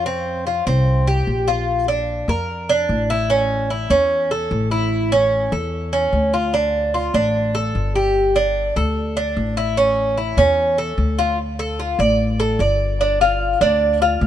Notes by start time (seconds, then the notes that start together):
Already playing: F2
0.06 C4
0.47 F4
0.67 C2 C4
1.07 G4
1.27 A#1
1.48 F4
1.88 D4
2.28 F2 A#4
2.69 D4
2.89 A1
3.10 E4
3.30 C#4
3.70 E4
3.90 E2 C#4
4.31 A4
4.51 A1
4.71 E4
5.12 C#4
5.52 E2 A4
5.93 C#4
6.13 D2
6.34 F4
6.54 D4
6.94 F4
7.14 A1 D4
7.55 A4
7.75 G1
7.95 G4
8.36 D4
8.76 D2 A4
9.17 D4
9.37 A1
9.57 E4
9.77 C#4
10.18 E4
10.37 E2 C#4
10.78 A4
10.98 D2
11.19 F4
11.59 A4
11.80 F4
11.99 A1 D5
12.40 A4
12.59 G1 D5
13.01 D4
13.21 F4
13.61 D2 D4
14.02 F4
14.21 D2